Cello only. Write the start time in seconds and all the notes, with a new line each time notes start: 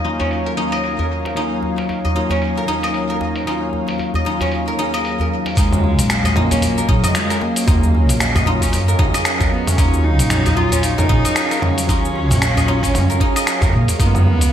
5.57 G#3
6.37 A#3
6.90 F#3
7.16 G#3
7.42 A#3
9.52 B3
9.67 C#4
10.05 D#4
10.57 F4
10.84 D#4
11.64 C#4
14.02 B3